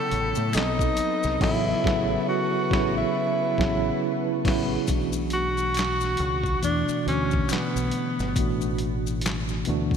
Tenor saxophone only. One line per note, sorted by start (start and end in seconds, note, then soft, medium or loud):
0.00 0.57 A4 loud
0.55 1.42 D#4 medium
1.42 2.24 E4 loud
2.29 2.93 F#4 medium
2.97 4.41 E4 medium
5.33 6.59 F#4 loud
6.64 7.04 D4 medium
7.08 7.53 C#4 medium
7.51 8.37 B3 medium